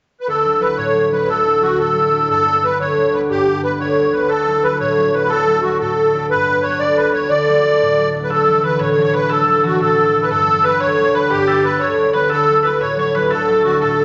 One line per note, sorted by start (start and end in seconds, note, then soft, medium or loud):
0.21 0.27 B4 medium
0.27 1.26 D2 medium
0.27 0.63 A4 medium
0.44 0.59 F#3 soft
0.44 0.60 D4 soft
0.44 0.60 E4 soft
0.60 0.94 F#3 soft
0.60 0.95 D4 soft
0.60 0.95 E4 soft
0.60 0.78 B4 medium
0.77 1.77 A2 medium
0.77 1.09 C#5 medium
0.95 1.10 F#3 soft
0.95 1.11 D4 soft
0.95 1.11 E4 soft
1.11 1.45 F#3 soft
1.11 1.46 D4 soft
1.11 1.46 E4 soft
1.11 1.29 B4 medium
1.27 2.33 D2 medium
1.27 1.63 A4 medium
1.46 1.61 F#3 soft
1.46 1.62 D4 soft
1.46 1.62 E4 soft
1.62 1.92 F#3 soft
1.62 1.95 D4 soft
1.62 1.98 E4 medium
1.62 1.79 F#4 medium
1.78 2.33 A2 medium
1.78 2.29 A4 medium
1.93 2.10 F#3 soft
1.93 2.11 D4 soft
1.99 2.12 E4 soft
2.11 2.33 F#3 soft
2.11 2.46 D4 soft
2.11 4.47 E4 medium
2.28 2.84 G2 medium
2.28 2.64 A4 medium
2.45 2.62 G3 soft
2.45 2.63 B3 soft
2.45 2.63 D4 soft
2.63 2.95 G3 soft
2.63 2.97 B3 soft
2.63 2.99 D4 medium
2.63 2.79 B4 medium
2.79 3.34 D2 medium
2.79 3.15 C#5 medium
2.96 3.12 G3 soft
2.96 3.13 B3 soft
2.96 3.13 D4 soft
3.13 3.45 G3 soft
3.13 3.46 B3 soft
3.13 3.47 D4 medium
3.13 3.21 B4 medium
3.29 3.84 G2 medium
3.29 3.61 G4 loud
3.46 3.62 G3 soft
3.46 3.63 B3 soft
3.46 3.64 D4 soft
3.63 3.95 G3 soft
3.63 3.96 B3 soft
3.63 3.97 D4 soft
3.63 3.78 B4 medium
3.80 4.28 D2 medium
3.80 4.14 C#5 medium
3.96 4.11 G3 soft
3.96 4.12 B3 soft
3.96 4.13 D4 soft
4.12 4.34 G3 soft
4.12 6.47 B3 soft
4.12 4.47 D4 medium
4.12 4.30 B4 medium
4.29 5.28 D2 medium
4.29 4.64 A4 medium
4.46 4.61 F#3 soft
4.46 4.62 D4 soft
4.46 4.63 E4 soft
4.62 4.95 F#3 soft
4.62 4.97 D4 soft
4.62 4.97 E4 soft
4.62 4.79 B4 medium
4.80 5.79 A2 medium
4.80 5.15 C#5 medium
4.97 5.11 F#3 soft
4.97 5.12 D4 soft
4.97 5.13 E4 soft
5.12 5.45 F#3 soft
5.12 5.46 D4 soft
5.12 5.47 E4 soft
5.12 5.30 B4 medium
5.29 6.35 D2 medium
5.29 5.61 A4 loud
5.46 5.63 F#3 soft
5.46 5.64 D4 soft
5.46 5.65 E4 soft
5.62 5.97 F#3 soft
5.62 5.98 D4 soft
5.62 5.98 E4 soft
5.62 5.78 F#4 medium
5.80 6.35 A2 medium
5.80 6.26 A4 medium
5.98 6.13 F#3 soft
5.98 6.14 D4 soft
5.98 6.14 E4 soft
6.14 6.35 F#3 soft
6.14 6.47 D4 soft
6.14 8.76 E4 soft
6.30 6.85 G2 medium
6.30 6.65 B4 loud
6.47 6.63 G3 soft
6.47 6.64 B3 soft
6.47 6.65 D4 soft
6.63 6.96 G3 soft
6.63 6.98 B3 soft
6.63 6.98 D4 soft
6.63 6.80 C#5 medium
6.79 7.29 D2 medium
6.79 6.97 D5 medium
6.97 7.13 G3 soft
6.97 7.14 B3 soft
6.97 7.14 D4 soft
6.97 7.12 B4 medium
7.13 7.35 G3 soft
7.13 10.25 B3 soft
7.13 7.49 D4 soft
7.13 7.30 C#5 medium
7.30 8.28 D2 medium
7.30 8.09 D5 loud
7.48 7.63 F#3 soft
7.48 7.64 A3 soft
7.48 7.65 D4 soft
7.64 7.98 F#3 soft
7.64 7.99 A3 soft
7.64 7.99 D4 soft
7.81 8.35 A2 medium
7.98 8.13 F#3 soft
7.98 8.14 A3 soft
7.98 8.14 D4 soft
8.14 8.35 F#3 soft
8.14 11.47 A3 soft
8.14 8.47 D4 soft
8.24 8.30 B4 medium
8.29 9.28 D2 medium
8.29 8.63 A4 medium
8.29 8.62 A4 medium
8.46 8.62 E3 soft
8.46 8.62 F#3 soft
8.46 8.63 D4 soft
8.63 8.95 E3 soft
8.63 8.96 F#3 soft
8.63 8.97 D4 soft
8.63 8.79 B4 medium
8.63 8.81 B4 medium
8.79 9.79 A2 medium
8.79 8.90 C#5 medium
8.91 9.03 C#5 medium
8.96 9.11 E3 soft
8.96 9.12 F#3 soft
8.96 9.13 D4 soft
9.02 9.12 C#5 medium
9.02 9.14 C#5 medium
9.12 9.46 E3 medium
9.12 9.46 F#3 soft
9.12 9.48 D4 medium
9.12 9.28 B4 medium
9.12 9.31 B4 medium
9.29 10.35 D2 medium
9.29 9.61 A4 medium
9.29 9.62 A4 medium
9.47 9.63 E3 soft
9.47 9.63 F#3 soft
9.47 9.64 D4 medium
9.64 9.95 E3 soft
9.64 9.96 F#3 soft
9.64 9.97 D4 soft
9.64 9.80 F#4 soft
9.64 9.80 F#4 medium
9.80 10.35 A2 medium
9.80 10.20 A4 medium
9.80 10.25 A4 medium
9.97 10.12 E3 soft
9.97 10.12 F#3 soft
9.97 10.13 D4 soft
10.13 10.35 E3 soft
10.13 10.35 F#3 soft
10.13 10.46 D4 soft
10.22 10.29 B4 medium
10.29 10.85 G2 medium
10.29 10.63 A4 medium
10.29 10.65 A4 loud
10.46 10.61 G3 soft
10.46 10.62 B3 soft
10.46 10.65 D4 soft
10.61 10.96 G3 soft
10.61 10.98 B3 soft
10.61 10.79 B4 medium
10.61 10.80 B4 medium
10.65 10.97 D4 medium
10.80 11.35 D2 medium
10.80 11.15 C#5 medium
10.80 10.91 C#5 medium
10.93 11.03 C#5 medium
10.97 11.11 G3 soft
10.97 11.13 B3 soft
10.97 11.15 D4 soft
11.05 11.14 C#5 medium
11.12 11.46 G3 medium
11.12 11.48 B3 soft
11.12 11.48 D4 medium
11.12 11.31 B4 medium
11.12 11.29 B4 medium
11.30 11.85 G2 medium
11.30 11.46 G4 medium
11.30 11.65 G4 medium
11.47 11.62 G3 soft
11.47 11.63 B3 soft
11.47 11.64 D4 soft
11.47 11.78 A4 medium
11.64 11.97 G3 soft
11.64 11.98 B3 soft
11.64 11.99 D4 soft
11.64 11.81 B4 medium
11.79 12.31 D2 medium
11.79 12.11 C#5 medium
11.79 12.13 C#5 medium
11.98 12.13 G3 soft
11.98 12.14 B3 soft
11.98 12.15 D4 soft
12.13 12.35 G3 soft
12.13 14.05 B3 soft
12.13 12.50 D4 soft
12.13 12.29 B4 medium
12.29 13.31 D2 medium
12.29 12.61 A4 medium
12.29 12.66 A4 loud
12.49 12.65 F#3 soft
12.49 12.66 D4 soft
12.49 12.66 E4 soft
12.63 12.96 F#3 soft
12.63 12.99 D4 soft
12.63 13.02 E4 soft
12.63 12.79 B4 medium
12.63 12.81 B4 medium
12.81 13.81 A2 medium
12.81 12.97 C#5 medium
12.81 12.98 C#5 medium
12.96 13.14 F#3 soft
12.96 13.15 D4 soft
12.96 13.14 C#5 medium
12.96 13.15 C#5 medium
13.02 13.16 E4 soft
13.15 13.48 F#3 soft
13.15 13.50 D4 soft
13.15 13.50 E4 medium
13.15 13.30 B4 medium
13.15 13.31 B4 medium
13.30 14.05 D2 medium
13.30 13.80 A4 medium
13.30 13.63 A4 loud
13.49 13.65 F#3 soft
13.49 13.66 D4 soft
13.49 13.66 E4 medium
13.64 13.98 F#3 soft
13.64 14.00 D4 soft
13.64 14.00 E4 soft
13.64 13.80 F#4 loud
13.81 14.05 A2 medium
13.81 14.05 A4 medium
14.00 14.05 F#3 soft
14.00 14.05 D4 soft
14.00 14.05 E4 soft